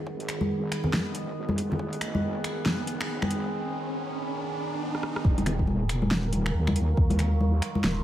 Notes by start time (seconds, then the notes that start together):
Already playing: D#3 B3 G#4, riser
0.07 G#1, kick
0.20 closed hi-hat
0.28 finger snap, closed hi-hat
0.41 high conga
0.72 finger snap, closed hi-hat
0.84 low conga
0.93 G#1, finger snap, snare, high conga
1.15 closed hi-hat
1.49 kick, high conga
1.58 closed hi-hat
1.72 low conga
1.79 G#1, kick
1.93 closed hi-hat
2.01 finger snap, closed hi-hat
2.15 high conga
2.44 finger snap, closed hi-hat
2.66 snare, high conga
2.87 closed hi-hat
3.01 finger snap
3.09 G#1
3.22 finger snap, high conga
3.31 closed hi-hat
4.95 cross-stick
5.03 cross-stick
5.16 cross-stick
5.24 D#1 D#3 F#3 F4 A#4, kick
5.38 closed hi-hat, high conga
5.46 finger snap, closed hi-hat, low conga
5.59 kick
5.67 high conga
5.89 finger snap, closed hi-hat
6.02 high conga
6.11 snare
6.33 closed hi-hat, high conga
6.46 finger snap
6.54 D#2
6.67 finger snap, high conga
6.76 closed hi-hat
6.97 D#2, kick
7.10 closed hi-hat, high conga
7.19 finger snap, closed hi-hat, low conga
7.40 high conga
7.62 finger snap, closed hi-hat
7.75 high conga
7.84 D#1, finger snap, snare